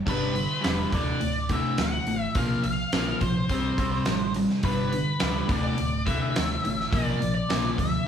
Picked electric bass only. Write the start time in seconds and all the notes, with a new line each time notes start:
0.07 G1
0.65 E1
0.93 D1
1.22 D1
1.79 D1
2.07 A1
2.35 A#1
2.64 A#1
2.94 A#1
3.22 A#1
3.50 C2
3.79 C2
4.08 A1
4.64 G1
5.22 C#2
5.49 D1
5.80 D1
6.38 D1
6.67 A1
6.92 A#1
7.23 A#1
7.52 A#1
7.79 D2